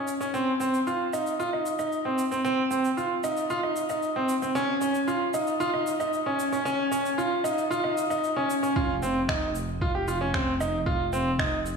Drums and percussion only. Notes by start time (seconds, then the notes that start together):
0.08 shaker
0.21 shaker
0.34 shaker
0.61 shaker
0.74 shaker
0.87 shaker
1.14 shaker
1.27 shaker
1.40 shaker
1.66 shaker
1.79 shaker
1.92 shaker
2.19 shaker
2.32 shaker
2.45 shaker
2.71 shaker
2.85 shaker
2.98 shaker
3.24 shaker
3.37 shaker
3.50 shaker
3.76 shaker
3.90 shaker
4.03 shaker
4.29 shaker
4.42 shaker
4.55 shaker
4.82 shaker
4.95 shaker
5.08 shaker
5.34 shaker
5.47 shaker
5.61 shaker
5.87 shaker
6.00 shaker
6.13 shaker
6.40 shaker
6.53 shaker
6.66 shaker
6.92 shaker
7.06 shaker
7.19 shaker
7.45 shaker
7.58 shaker
7.72 shaker
7.98 shaker
8.11 shaker
8.24 shaker
8.50 shaker
8.64 shaker
8.76 kick
9.03 shaker
9.29 finger snap, kick
9.55 shaker
9.81 kick
10.08 shaker
10.34 finger snap, kick
10.61 shaker
10.86 kick
11.13 shaker
11.39 finger snap, kick
11.66 shaker